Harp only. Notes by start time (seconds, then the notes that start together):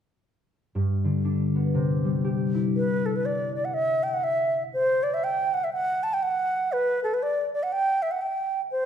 0.75 G2
1.04 D3
1.25 D4
1.55 B3
1.74 C3
2.05 G3
2.24 G4
2.55 E4